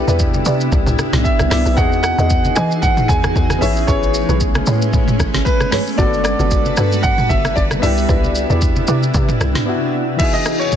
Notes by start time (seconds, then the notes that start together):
Already playing: C3 B3 D4 E4 G4
0.08 E2 E4 B4 D5, high conga, shaker
0.19 kick, shaker
0.34 high conga, shaker
0.45 C3 E4 B4 D5, high conga, shaker
0.61 shaker
0.72 C2, kick, low conga, shaker
0.87 C2, mid tom, shaker
0.98 cross-stick, high conga, shaker
1.13 B1, snare, mid tom, high conga, shaker
1.24 E5, kick, shaker
1.39 C2, cross-stick, high conga, shaker
1.50 C2 E4 B4 D5 E5, cross-stick, snare, open hi-hat, low conga, shaker
1.66 B1, shaker
1.74 E2 E3 B3 D#4 F#4 G#4 D#5 F#5, kick, low conga, shaker
1.79 F#4 G#4
1.93 shaker
2.03 F#5, cross-stick, shaker
2.18 E2 F#4 G#4 D#5, high conga, shaker
2.30 kick, shaker
2.44 high conga, shaker
2.56 E3 F#4 G#4 D#5 G#5, cross-stick, high conga, shaker
2.71 shaker
2.82 F#5, kick, low conga, shaker
2.97 mid tom, shaker
3.08 E2 G#5, kick, high conga, shaker
3.23 cross-stick, high conga, shaker
3.36 E2, kick, shaker
3.50 cross-stick, high conga, shaker
3.59 A1 G#3 A3 B3 C#4 G#4 B4 C#5 E5, open hi-hat, low conga, shaker
3.63 E4 G#4
3.77 shaker
3.87 A1 G#4 B4 C#5, kick, low conga, shaker
4.03 shaker
4.14 shaker
4.29 B1 G#4 B4 C#5, high conga, shaker
4.41 kick, shaker
4.55 cross-stick, high conga, shaker
4.66 A2 G#4 B4 C#5, high conga, shaker
4.82 shaker
4.93 kick, low conga, shaker
5.08 mid tom, shaker
5.20 A1, kick, cross-stick, high conga, shaker
5.34 snare, high conga, shaker
5.45 B4, kick, shaker
5.60 cross-stick, high conga, shaker
5.71 G#4 B4 C#5, cross-stick, snare, open hi-hat, low conga, shaker
5.87 shaker
5.95 G1 G3 A#3 D4 F#4 A4 B4 D5, kick, low conga, shaker
6.00 B3 F#4 A4
6.14 shaker
6.24 D5, cross-stick, shaker
6.39 G1 F#4 A4 B4, high conga, shaker
6.51 kick, shaker
6.65 high conga, shaker
6.77 G2 F#4 A4 B4, cross-stick, high conga, shaker
6.92 shaker
7.03 F#5, kick, low conga, shaker
7.18 mid tom, shaker
7.29 G1 E5, kick, high conga, shaker
7.44 cross-stick, high conga, shaker
7.56 G1 D5, kick, shaker
7.71 cross-stick, high conga, shaker
7.79 C2 C3 B3 D4 E4 B4 D5 E5, open hi-hat, low conga, shaker
7.84 E4 G4
7.98 shaker
8.09 C2 E4 B4 D5, kick, low conga, shaker
8.24 high conga, shaker
8.35 shaker
8.50 E2 E4 B4 D5, high conga, shaker
8.62 kick, shaker
8.76 high conga, shaker
8.88 C3 E4 B4 D5, high conga, shaker
9.03 shaker
9.14 C3, kick, low conga, shaker
9.29 mid tom, shaker
9.41 C2, cross-stick, high conga, shaker
9.55 snare, mid tom, high conga, shaker
9.65 B3 D4 E4 F#4
10.16 E2 E3 B3 D#4 F#4 G#4 E5, kick, crash, shaker
10.22 F#4 G#4
10.33 D#5, shaker
10.46 cross-stick, shaker
10.59 C#5, shaker
10.72 kick, shaker